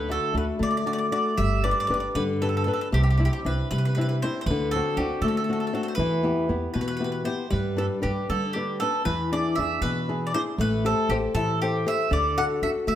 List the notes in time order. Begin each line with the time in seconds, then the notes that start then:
Already playing: D2 D3 B4
0.09 A3 D4 F#4 A4
0.34 D2 A3 D4 F#4 B4
0.59 D3 A3 D5
0.71 D5
0.77 D5
0.86 A3 D4 F#4 D5
0.93 D5
0.98 D5
1.12 A3 D4 F#4 D5
1.37 G1 G3 E5
1.64 D4 G4 B4 D5
1.71 D5
1.80 D5
1.87 G1 D4 G4 B4 D5
1.94 D5
2.00 D5
2.15 G2 D3 B4
2.42 D4 G4 A4 B4
2.49 A4
2.57 A4
2.64 D4 G4 A4 B4
2.73 A4
2.81 A4
2.92 C2 C3 G4
3.03 G4
3.10 G4
3.17 C4 D4 E4 G4
3.25 G4
3.33 G4
3.45 C2 C4 D4 E4 B4
3.71 C3 G3 B4
3.78 B4
3.85 B4
3.95 C4 D4 E4 B4
4.01 B4
4.09 B4
4.22 C4 D4 E4 C5
4.41 C5
4.46 D2 B4
4.50 D3
4.71 C4 D4 A4
4.76 F#4
4.97 D2 C4 D4 F#4 G4
5.21 D3 A3 A4
5.28 A4
5.37 A4
5.44 A4
5.49 C4 D4 F#4 A4
5.60 A4
5.67 A4
5.73 C4 D4 F#4 A4
5.83 A4
5.88 C5
5.95 E2 B4
5.99 E3
6.23 B3 E4 G4
6.49 E2 B3 E4 G4
6.74 B2 E3 B4
6.81 B4
6.88 B4
6.97 B3 E4 B4
7.01 G4 B4
7.12 B4
7.24 B3 E4 G4 C5
7.50 G2 G3 B4
7.77 D4 G4 A4 B4
8.02 G2 D4 G4 B4
8.29 D3 G3 A4
8.53 D4 G4 B4
8.80 D4 G4 A4 B4
9.05 E2 E3 B4
9.32 D4 E4 G#4 D5
9.55 E2 D4 E4 G#4 E5
9.81 B2 E3 B4
10.09 D4 E4 G#4
10.27 D5
10.34 D4 E4 G#4 C5
10.58 A1 A3 B4
10.85 G4 A4 C5
11.09 A1 G4 A4 C5
11.34 A2 E3 A4
11.62 G4 A4 C5
11.86 G4 A4 C5 E5
12.11 D2 D3 D5
12.37 D4 F#4 A4 F#5
12.62 D2 D4 F#4 A4 E5
12.87 D3 A3 E5